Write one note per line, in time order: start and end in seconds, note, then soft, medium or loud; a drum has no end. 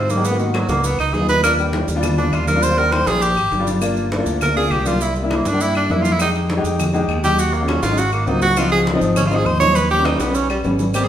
0.00 0.63 G#2 medium
0.00 0.12 C4 medium
0.10 0.26 A#3 medium
0.10 high conga medium
0.10 maracas medium
0.16 0.24 G#3 medium
0.16 0.24 D#4 medium
0.16 0.25 G4 medium
0.25 0.39 B3 medium
0.25 high conga soft
0.25 maracas medium
0.31 0.37 A#3 medium
0.31 0.37 B3 medium
0.31 0.37 F#4 medium
0.38 0.56 D#3 medium
0.38 0.81 A#3 medium
0.38 0.81 B3 medium
0.38 0.81 F#4 medium
0.38 high conga soft
0.38 maracas soft
0.54 0.68 F#3 medium
0.54 high conga loud
0.54 claves medium
0.54 maracas soft
0.68 0.97 C#2 loud
0.68 0.87 A#3 medium
0.68 high conga medium
0.68 maracas medium
0.84 0.99 B3 medium
0.84 high conga soft
0.84 maracas medium
0.98 1.13 C#2 medium
0.98 1.15 D#4 medium
0.98 high conga soft
0.98 claves medium
0.98 maracas soft
1.13 1.83 D#2 medium
1.13 1.28 G#4 medium
1.13 high conga medium
1.13 maracas soft
1.20 1.36 B3 medium
1.20 1.37 D#4 medium
1.20 1.37 F4 medium
1.29 1.43 B4 loud
1.29 high conga medium
1.29 maracas medium
1.43 1.54 G3 medium
1.43 1.54 D4 medium
1.43 1.54 F4 medium
1.43 1.53 A#4 loud
1.43 high conga soft
1.43 claves medium
1.43 maracas loud
1.58 1.84 G3 medium
1.58 1.85 D4 medium
1.58 1.85 G4 medium
1.58 high conga soft
1.58 maracas soft
1.73 high conga loud
1.73 maracas soft
1.88 2.30 D#2 loud
1.88 high conga soft
1.88 maracas medium
1.95 2.37 G3 loud
1.95 2.38 D4 medium
1.95 2.38 F4 loud
2.03 high conga soft
2.03 low conga loud
2.03 claves medium
2.03 maracas medium
2.18 2.35 D4 medium
2.18 high conga soft
2.18 low conga medium
2.18 maracas soft
2.32 3.02 D#2 loud
2.32 2.47 F4 medium
2.32 high conga soft
2.32 claves medium
2.32 maracas soft
2.47 2.64 A#4 loud
2.47 high conga medium
2.47 maracas medium
2.55 2.65 G3 medium
2.55 2.66 D4 medium
2.55 2.66 F4 loud
2.63 2.80 C5 loud
2.63 high conga soft
2.63 maracas loud
2.70 2.75 G3 medium
2.70 2.76 D4 medium
2.70 2.76 F4 medium
2.77 3.19 G3 medium
2.77 3.19 D4 medium
2.77 3.20 G4 medium
2.77 2.94 A#4 loud
2.77 high conga soft
2.77 maracas soft
2.92 3.09 C5 loud
2.92 high conga loud
2.92 claves medium
2.92 maracas soft
3.07 3.35 A#1 loud
3.07 3.24 G#4 loud
3.07 high conga medium
3.07 maracas medium
3.22 3.67 G4 loud
3.22 high conga soft
3.22 maracas medium
3.37 3.51 G#1 medium
3.37 high conga soft
3.37 claves medium
3.37 maracas soft
3.52 4.21 G1 medium
3.52 high conga medium
3.52 maracas soft
3.59 3.75 G3 medium
3.59 3.75 D4 medium
3.59 3.76 F4 loud
3.67 high conga medium
3.67 maracas medium
3.81 4.08 A#3 loud
3.81 4.08 D4 medium
3.81 4.08 F4 loud
3.81 high conga soft
3.81 claves medium
3.81 maracas medium
3.97 high conga soft
3.97 maracas soft
4.12 high conga loud
4.12 maracas soft
4.18 4.45 A#3 medium
4.18 4.45 D4 medium
4.18 4.45 F4 medium
4.26 4.68 D2 loud
4.26 high conga soft
4.26 maracas medium
4.41 4.56 A#4 medium
4.41 high conga soft
4.41 low conga medium
4.41 claves medium
4.41 maracas medium
4.56 4.77 A#3 medium
4.56 4.77 D4 medium
4.56 4.77 F4 medium
4.56 4.73 G#4 loud
4.56 high conga soft
4.56 low conga medium
4.56 maracas soft
4.70 5.40 C2 medium
4.70 4.88 G4 medium
4.70 high conga soft
4.70 claves medium
4.70 maracas soft
4.85 5.01 A#3 medium
4.85 5.01 D4 medium
4.85 5.03 F4 medium
4.85 5.01 F4 medium
4.85 high conga medium
4.85 maracas medium
5.01 5.16 E4 medium
5.01 high conga soft
5.01 maracas medium
5.16 5.34 G3 medium
5.16 high conga soft
5.16 maracas soft
5.23 5.44 A#3 medium
5.23 5.44 D4 medium
5.23 5.44 E4 medium
5.30 5.48 A#3 medium
5.30 high conga loud
5.30 claves medium
5.30 maracas soft
5.45 5.87 G2 medium
5.45 5.63 D4 loud
5.45 high conga medium
5.45 maracas medium
5.52 5.79 A#3 medium
5.52 5.79 D4 medium
5.52 5.79 G4 medium
5.60 5.76 E4 loud
5.60 high conga soft
5.60 maracas medium
5.75 5.93 D4 medium
5.75 high conga soft
5.75 claves medium
5.75 maracas soft
5.90 6.59 F2 medium
5.90 6.11 A#3 medium
5.90 6.11 D4 medium
5.90 6.03 E4 medium
5.90 6.11 E4 medium
5.90 high conga medium
5.90 maracas soft
6.02 6.13 F4 loud
6.02 high conga medium
6.02 maracas medium
6.12 6.21 E4 medium
6.20 6.46 G#3 medium
6.20 6.46 D#4 medium
6.20 6.30 D#4 loud
6.20 6.46 G4 medium
6.20 high conga soft
6.20 claves medium
6.20 maracas medium
6.35 high conga soft
6.35 maracas soft
6.50 high conga loud
6.50 maracas soft
6.57 6.83 G#3 loud
6.57 6.83 D#4 medium
6.57 6.83 G4 loud
6.64 7.05 F2 loud
6.64 high conga soft
6.64 maracas medium
6.79 high conga soft
6.79 low conga medium
6.79 claves medium
6.79 maracas medium
6.93 7.14 G#3 loud
6.93 7.15 D#4 medium
6.93 7.15 G4 loud
6.93 high conga soft
6.93 low conga medium
6.93 maracas soft
7.08 7.77 D#2 medium
7.08 high conga soft
7.08 claves medium
7.08 maracas soft
7.23 7.38 G#3 medium
7.23 7.39 D#4 medium
7.23 7.40 G4 loud
7.23 7.39 G4 medium
7.23 high conga medium
7.23 maracas medium
7.39 7.55 F#4 medium
7.39 high conga soft
7.39 maracas medium
7.53 7.70 A#3 medium
7.53 high conga soft
7.53 maracas soft
7.60 7.81 F#3 medium
7.60 7.82 G#3 medium
7.60 7.82 C#4 medium
7.60 7.82 F4 medium
7.68 7.82 C#4 medium
7.68 high conga loud
7.68 claves medium
7.68 maracas soft
7.82 8.24 G#1 loud
7.82 8.00 F4 loud
7.82 high conga medium
7.82 maracas medium
7.90 7.98 F#3 medium
7.90 7.98 G#3 medium
7.90 7.98 C#4 medium
7.90 7.98 D#4 medium
7.98 8.12 F#4 loud
7.98 high conga soft
7.98 maracas medium
8.12 8.29 A#3 medium
8.12 high conga soft
8.12 claves medium
8.12 maracas soft
8.27 8.96 C#2 medium
8.27 8.48 F#3 medium
8.27 8.48 A#3 medium
8.27 8.48 C4 medium
8.27 8.42 D#4 medium
8.27 8.49 F4 medium
8.27 high conga medium
8.27 maracas soft
8.42 8.59 F#4 loud
8.42 high conga medium
8.42 maracas medium
8.57 8.83 F3 medium
8.57 8.83 C4 medium
8.57 8.83 D#4 medium
8.57 8.71 F4 loud
8.57 claves medium
8.57 maracas medium
8.71 8.81 G#4 medium
8.71 maracas soft
8.86 high conga loud
8.86 maracas soft
8.94 9.20 F3 medium
8.94 9.20 C4 medium
8.94 9.20 D#4 loud
9.01 9.43 G#1 medium
9.01 high conga soft
9.01 maracas medium
9.16 9.28 C#4 medium
9.16 high conga soft
9.16 low conga medium
9.16 claves medium
9.16 maracas medium
9.26 9.37 F4 medium
9.31 9.52 F3 medium
9.31 9.52 C4 medium
9.31 9.52 D#4 loud
9.31 high conga soft
9.31 maracas soft
9.36 9.47 G#4 medium
9.45 10.14 D#2 medium
9.45 9.59 C5 medium
9.45 high conga soft
9.45 claves medium
9.45 maracas soft
9.60 9.75 F3 medium
9.60 9.76 C4 medium
9.60 9.76 D#4 medium
9.60 9.77 C#5 loud
9.60 high conga medium
9.60 maracas medium
9.75 9.90 B4 loud
9.75 high conga soft
9.75 maracas medium
9.90 10.07 G4 loud
9.90 high conga soft
9.90 maracas soft
9.97 10.18 G3 medium
9.97 10.18 B3 medium
9.97 10.19 C#4 medium
10.05 10.21 D#4 medium
10.05 high conga loud
10.05 claves medium
10.05 maracas soft
10.19 10.61 B1 loud
10.19 10.36 B3 medium
10.19 high conga medium
10.19 maracas medium
10.27 10.53 G3 medium
10.27 10.53 B3 medium
10.27 10.54 C#4 medium
10.35 10.49 C#4 loud
10.35 high conga soft
10.35 maracas medium
10.50 10.59 G3 medium
10.50 high conga soft
10.50 claves medium
10.50 maracas soft
10.64 11.08 G#1 loud
10.64 10.85 G3 medium
10.64 10.85 B3 medium
10.64 10.86 C#4 medium
10.64 high conga medium
10.64 maracas soft
10.79 high conga medium
10.79 maracas medium
10.94 11.08 G3 medium
10.94 11.08 A#3 medium
10.94 11.08 C4 medium
10.94 11.06 G4 medium
10.94 high conga soft
10.94 claves medium
10.94 maracas loud
11.04 11.08 G#4 loud